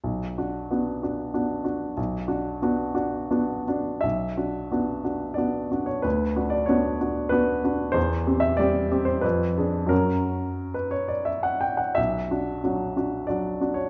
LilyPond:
\new Staff \with { instrumentName = "Grand piano" } { \time 3/4 \key b \minor \tempo 4 = 91 << { r2. | r2. | e''2 d''8. cis''16 | b'8. d''16 cis''4 b'4 |
c''8. e''16 d''8. c''16 ces''4 | ais'4~ ais'16 b'16 cis''16 d''16 e''16 fis''16 g''16 fis''16 | e''2 d''8. cis''16 | } \\ { b,,8 <d' fis'>8 <b d' fis'>8 <d' fis'>8 <b d' fis'>8 <d' fis'>8 | b,,8 <d' fis'>8 <b d' fis'>8 <d' fis'>8 <b d' fis'>8 <d' fis'>8 | b,,8 <d' fis'>8 <b d' fis'>8 <d' fis'>8 <b d' fis'>8 <d' fis'>8 | d,8 <d' fis'>8 <b d' fis'>8 <d' fis'>8 <b d' fis'>8 <d' fis'>8 |
e,8 <c' g'>8 <g c' g'>8 <c' g'>8 f,8 <d' aes'>8 | <fis, fis cis' fis'>2. | b,,8 <d' fis'>8 <fis d' fis'>8 <d' fis'>8 <fis d' fis'>8 <d' fis'>8 | } >> }